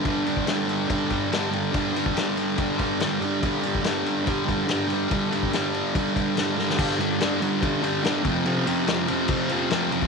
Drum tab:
CC |----------------|----------------|----------------|----------------|
RD |x-x-x-x-x-x-x-x-|x-x-x-x-x-x-x-x-|x-x-x-x-x-x-x-x-|x-x-x-x-x-x-x---|
SD |----o-------o---|----o-------o---|----o-------o---|----o-------o-oo|
BD |o--o----o-o-----|o--o----o-o-----|o--o----o-o-----|o--o----o-o-----|

CC |x---------------|----------------|
RD |--x-x-x-x-x-x-x-|x-x-x-x-x-x-x-x-|
SD |----o-------o---|----o-------o---|
BD |o-------o-----o-|--------o------o|